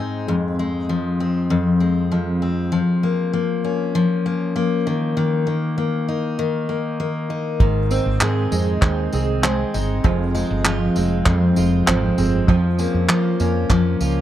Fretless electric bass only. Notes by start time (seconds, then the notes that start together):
7.60 G#1
8.06 G#1
8.22 G#2
8.52 F2
8.82 D#2
9.14 C2
9.74 G1
10.05 F1
10.51 G1
10.97 F1
11.26 F2
11.57 F1
11.87 G#1
12.18 G1
12.48 F2
12.94 F2
13.09 F3
13.40 F2
13.70 F2
14.01 C#2